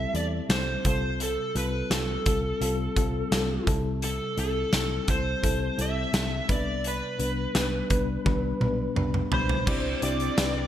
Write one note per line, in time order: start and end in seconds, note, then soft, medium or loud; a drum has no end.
0.00 0.85 C3 medium
0.00 0.13 G3 medium
0.00 0.14 C4 medium
0.00 0.14 E4 medium
0.00 0.15 A4 medium
0.00 0.15 E5 medium
0.13 0.39 E2 medium
0.13 0.47 G3 medium
0.13 0.47 C4 medium
0.13 0.47 E4 medium
0.13 0.48 A4 medium
0.13 0.25 D5 medium
0.13 closed hi-hat medium
0.49 0.75 C2 medium
0.49 0.82 G3 medium
0.49 0.82 C4 medium
0.49 0.83 E4 medium
0.49 0.83 A4 medium
0.49 0.86 C5 medium
0.49 snare loud
0.49 closed hi-hat medium
0.84 1.36 C2 medium
0.84 1.87 C3 medium
0.84 1.51 G3 medium
0.84 1.51 C4 medium
0.84 1.51 F4 medium
0.84 1.51 A4 medium
0.84 1.19 C5 medium
0.84 kick medium
0.84 closed hi-hat medium
1.20 1.57 A4 medium
1.20 closed hi-hat medium
1.55 1.81 C2 medium
1.55 1.88 G3 medium
1.55 1.88 C4 medium
1.55 1.89 F4 medium
1.55 1.89 A4 medium
1.55 1.92 B4 medium
1.55 closed hi-hat medium
1.90 2.16 C2 medium
1.90 2.24 G3 medium
1.90 2.24 C4 medium
1.90 2.24 F4 medium
1.90 2.24 A4 medium
1.90 3.64 A4 medium
1.90 snare medium
1.90 closed hi-hat medium
2.26 2.51 C2 medium
2.26 2.59 G3 medium
2.26 2.59 C4 medium
2.26 2.59 F4 medium
2.26 2.60 A4 medium
2.26 kick loud
2.26 closed hi-hat medium
2.61 2.86 C2 loud
2.61 2.94 G3 medium
2.61 2.94 C4 medium
2.61 2.95 F4 medium
2.61 2.95 A4 medium
2.61 closed hi-hat medium
2.96 3.22 C2 medium
2.96 3.29 G3 medium
2.96 3.30 C4 medium
2.96 3.30 F4 medium
2.96 3.30 A4 medium
2.96 kick medium
2.96 closed hi-hat medium
3.31 3.57 C2 medium
3.31 3.65 G3 medium
3.31 3.65 C4 medium
3.31 3.65 F4 medium
3.31 3.65 A4 medium
3.31 snare loud
3.31 closed hi-hat medium
3.66 4.18 C2 medium
3.66 4.69 C3 medium
3.66 4.33 G3 medium
3.66 4.33 C4 medium
3.66 4.33 E4 medium
3.66 4.34 A4 loud
3.66 kick loud
3.66 closed hi-hat medium
4.02 4.38 A4 medium
4.02 closed hi-hat medium
4.37 4.63 C2 medium
4.37 4.70 G3 medium
4.37 4.71 C4 medium
4.37 4.71 E4 medium
4.37 4.71 A4 medium
4.37 5.10 A4 medium
4.37 closed hi-hat medium
4.72 4.98 C2 medium
4.72 5.06 G3 medium
4.72 5.06 C4 medium
4.72 5.06 E4 medium
4.72 5.06 A4 medium
4.72 snare loud
4.72 closed hi-hat medium
5.08 5.34 C2 loud
5.08 5.41 G3 medium
5.08 5.41 C4 medium
5.08 5.41 E4 medium
5.08 5.42 A4 medium
5.08 5.82 C5 medium
5.08 kick medium
5.08 closed hi-hat medium
5.42 5.69 C2 loud
5.42 5.76 G3 medium
5.42 5.76 C4 medium
5.42 5.77 E4 medium
5.42 5.77 A4 medium
5.42 kick medium
5.42 closed hi-hat medium
5.78 6.04 C2 medium
5.78 6.11 G3 medium
5.78 6.11 C4 medium
5.78 6.12 E4 medium
5.78 6.12 A4 medium
5.78 6.51 E5 loud
5.78 closed hi-hat medium
6.13 6.39 C2 medium
6.13 6.47 G3 medium
6.13 6.47 C4 medium
6.13 6.47 E4 medium
6.13 6.47 A4 medium
6.13 snare loud
6.13 closed hi-hat medium
6.48 7.00 C2 medium
6.48 7.51 C3 medium
6.48 7.15 G3 medium
6.48 7.15 B3 medium
6.48 7.15 D4 medium
6.48 7.16 B4 medium
6.48 6.84 D5 medium
6.48 kick loud
6.48 closed hi-hat medium
6.84 8.94 B4 medium
6.84 closed hi-hat medium
7.19 7.45 C2 medium
7.19 7.52 G3 medium
7.19 7.53 B3 medium
7.19 7.53 D4 medium
7.19 7.53 B4 medium
7.19 closed hi-hat medium
7.54 7.80 C2 medium
7.54 7.88 G3 medium
7.54 7.88 B3 medium
7.54 7.88 D4 medium
7.54 7.89 B4 medium
7.54 snare loud
7.54 closed hi-hat medium
7.90 8.16 C2 medium
7.90 8.23 G3 medium
7.90 8.24 B3 medium
7.90 8.24 D4 medium
7.90 8.24 B4 loud
7.90 kick medium
7.90 closed hi-hat medium
8.25 8.51 C2 loud
8.25 8.59 G3 medium
8.25 8.59 B3 medium
8.25 8.59 D4 medium
8.25 8.59 B4 loud
8.25 kick medium
8.25 high tom soft
8.60 8.86 B1 medium
8.60 8.94 G3 medium
8.60 8.94 B3 medium
8.60 8.94 D4 medium
8.60 8.95 B4 medium
8.60 mid tom medium
8.96 9.22 C2 medium
8.96 9.29 G3 medium
8.96 9.30 B3 medium
8.96 9.30 D4 medium
8.96 9.30 B4 medium
8.96 mid tom medium
9.14 mid tom medium
9.31 9.57 B1 medium
9.31 9.65 B2 medium
9.31 9.65 G3 medium
9.31 9.65 D4 medium
9.31 9.99 C5 medium
9.31 9.65 B5 medium
9.31 floor tom medium
9.49 floor tom medium
9.66 9.93 C2 loud
9.66 10.67 C3 medium
9.66 10.67 G3 medium
9.66 10.00 C4 medium
9.66 10.67 C4 medium
9.66 10.00 D4 medium
9.66 10.00 E4 medium
9.66 10.01 G4 medium
9.66 10.01 D5 loud
9.66 kick loud
9.66 crash loud
10.02 10.28 C2 loud
10.02 10.35 C4 loud
10.02 10.36 D4 medium
10.02 10.36 E4 medium
10.02 10.36 G4 medium
10.02 10.36 D5 loud
10.02 10.67 D5 medium
10.02 closed hi-hat medium
10.20 closed hi-hat soft
10.38 10.63 C2 loud
10.38 10.67 C4 medium
10.38 10.67 D4 medium
10.38 10.67 E4 medium
10.38 10.67 G4 medium
10.38 10.67 B4 medium
10.38 snare loud
10.38 closed hi-hat medium
10.38 tambourine medium